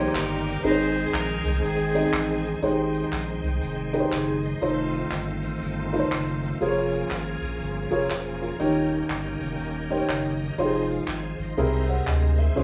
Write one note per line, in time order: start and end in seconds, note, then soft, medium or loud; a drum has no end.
0.00 0.60 D#3 medium
0.00 0.60 G3 medium
0.00 0.39 A#3 medium
0.00 0.60 A#3 medium
0.00 0.61 A#3 medium
0.00 0.14 D#4 medium
0.00 0.39 D#4 medium
0.00 0.40 G4 medium
0.00 0.63 G4 medium
0.00 0.14 G#4 medium
0.00 0.40 C5 medium
0.13 0.57 G1 medium
0.13 0.61 D#4 medium
0.13 0.61 G4 medium
0.13 0.64 A#4 medium
0.13 clap loud
0.13 tambourine loud
0.46 tambourine medium
0.64 1.06 G#1 loud
0.64 1.41 G#2 medium
0.64 2.60 D#3 medium
0.64 2.60 G#3 medium
0.64 1.26 C4 medium
0.64 2.60 C4 medium
0.64 1.26 D#4 medium
0.64 1.13 D#4 medium
0.64 1.60 G#4 medium
0.64 1.27 G#4 medium
0.64 2.60 G#4 medium
0.64 0.72 B4 medium
0.64 1.14 C5 loud
0.64 tambourine medium
0.71 1.30 C5 medium
0.96 tambourine medium
1.13 1.40 A#1 loud
1.13 1.65 D#4 medium
1.13 1.63 A#4 loud
1.13 clap medium
1.13 tambourine medium
1.45 1.60 C2 medium
1.45 tambourine medium
1.63 2.05 G#1 medium
1.63 2.60 C4 medium
1.63 2.60 D#4 medium
1.63 2.41 G#4 medium
1.63 tambourine medium
1.94 2.38 C4 medium
1.94 2.38 D#4 medium
1.94 2.38 G#4 medium
1.94 2.39 D#5 medium
1.94 tambourine medium
2.12 2.55 A1 medium
2.12 clap loud
2.12 tambourine loud
2.45 tambourine medium
2.62 3.05 G#1 loud
2.62 3.40 G#2 medium
2.62 4.59 D#3 medium
2.62 4.59 G#3 medium
2.62 2.71 B3 medium
2.62 3.25 D#4 medium
2.62 3.25 G4 medium
2.62 3.25 G#4 medium
2.62 3.25 C5 medium
2.62 4.10 G5 medium
2.62 tambourine medium
2.71 4.12 C4 medium
2.95 tambourine soft
3.12 3.39 A#1 medium
3.12 clap medium
3.12 tambourine medium
3.43 3.59 C2 medium
3.43 tambourine medium
3.62 4.04 F1 medium
3.62 tambourine medium
3.93 4.37 D#4 medium
3.93 4.37 G4 medium
3.93 4.37 G#4 medium
3.93 3.98 B4 medium
3.93 tambourine medium
4.00 4.40 C5 medium
4.12 4.54 F#1 medium
4.12 4.42 C4 medium
4.12 4.42 G#4 medium
4.12 clap medium
4.12 tambourine medium
4.43 4.62 D#4 medium
4.43 4.92 C5 medium
4.43 tambourine soft
4.61 5.04 F1 loud
4.61 6.58 D#3 medium
4.61 6.58 A3 medium
4.61 6.58 C4 medium
4.61 5.24 D#4 medium
4.61 4.70 D#4 medium
4.61 5.24 F4 medium
4.61 5.25 A4 medium
4.61 5.25 C5 medium
4.61 tambourine medium
4.69 6.61 F4 medium
4.94 tambourine soft
5.11 5.44 G1 loud
5.11 clap medium
5.11 tambourine medium
5.43 5.59 A1 medium
5.43 tambourine medium
5.62 6.04 G1 medium
5.62 tambourine medium
5.93 6.36 D#4 medium
5.93 6.36 F4 medium
5.93 6.37 A4 medium
5.93 5.98 B4 medium
5.93 tambourine medium
5.99 6.40 C5 medium
6.11 6.54 F#1 medium
6.11 clap medium
6.11 tambourine loud
6.43 tambourine soft
6.61 7.03 F1 loud
6.61 8.57 F3 medium
6.61 8.57 A#3 medium
6.61 8.56 C#4 medium
6.61 7.23 F4 medium
6.61 7.24 G#4 medium
6.61 8.56 G#4 medium
6.61 7.24 A#4 medium
6.61 6.69 C5 medium
6.61 tambourine medium
6.68 7.27 C#5 medium
6.93 tambourine soft
7.11 7.37 G#1 medium
7.11 clap medium
7.11 tambourine medium
7.42 7.58 A#1 medium
7.42 tambourine medium
7.60 7.87 G1 medium
7.60 tambourine medium
7.91 8.07 F1 medium
7.91 8.10 F4 medium
7.91 8.10 G#4 medium
7.91 8.10 A#4 medium
7.91 8.10 C#5 medium
7.91 tambourine medium
8.10 8.53 E1 medium
8.10 8.40 C5 medium
8.10 8.40 F5 medium
8.10 clap medium
8.10 tambourine medium
8.41 8.89 F4 medium
8.41 8.59 A#4 medium
8.41 tambourine soft
8.60 9.02 D#1 loud
8.60 10.55 D#3 medium
8.60 9.37 D#3 medium
8.60 10.55 A#3 medium
8.60 10.55 C#4 medium
8.60 9.22 D#4 medium
8.60 10.54 G4 medium
8.60 9.22 G4 medium
8.60 9.22 A#4 medium
8.60 9.23 C#5 medium
8.60 tambourine medium
8.91 tambourine soft
9.09 9.36 G1 medium
9.09 clap medium
9.09 tambourine medium
9.40 9.56 F1 medium
9.40 tambourine medium
9.59 10.01 D#1 medium
9.59 tambourine medium
9.90 10.34 D#4 medium
9.90 10.34 G4 medium
9.90 10.34 A#4 medium
9.90 9.95 C5 medium
9.90 10.08 G5 medium
9.90 tambourine medium
9.97 10.37 C#5 medium
10.08 10.51 F#1 medium
10.08 10.23 F5 medium
10.08 clap medium
10.08 tambourine medium
10.25 10.56 D#5 medium
10.41 tambourine soft
10.57 11.00 F1 loud
10.57 11.56 F3 medium
10.57 10.89 C4 medium
10.57 11.20 D#4 medium
10.57 10.89 D#4 medium
10.57 11.21 F4 medium
10.57 10.66 G4 medium
10.57 10.89 G#4 medium
10.57 11.21 C5 medium
10.57 tambourine medium
10.65 11.24 G#4 medium
10.90 11.08 G#3 medium
10.90 11.07 F4 medium
10.90 tambourine soft
11.07 11.34 G#1 medium
11.07 11.39 C4 medium
11.07 11.39 G#4 medium
11.07 clap medium
11.07 tambourine medium
11.39 11.55 G#1 medium
11.39 11.88 D#4 soft
11.39 11.88 C5 medium
11.39 tambourine medium
11.57 12.00 C2 medium
11.57 12.35 C3 medium
11.57 12.56 G#3 medium
11.57 11.83 C4 medium
11.57 12.56 C4 medium
11.57 11.83 E4 medium
11.57 12.07 E4 medium
11.57 11.83 G#4 medium
11.57 11.83 A#4 loud
11.57 12.07 A#4 medium
11.57 tambourine medium
11.89 12.07 C5 soft
11.89 12.06 F#5 medium
11.89 tambourine medium
12.07 12.49 D2 medium
12.07 12.38 A#4 medium
12.07 12.38 D#5 medium
12.07 12.37 G#5 medium
12.07 clap medium
12.07 tambourine medium
12.38 12.64 E4 medium
12.38 12.64 A#4 medium
12.38 12.63 C5 medium
12.38 12.64 E5 medium
12.38 tambourine soft
12.56 12.64 C#2 loud
12.56 12.64 C#3 medium
12.56 12.64 G#3 medium
12.56 12.64 C#4 medium
12.56 12.64 F4 medium
12.56 12.64 G#4 medium
12.56 12.64 B4 medium
12.56 12.64 C5 medium
12.56 tambourine medium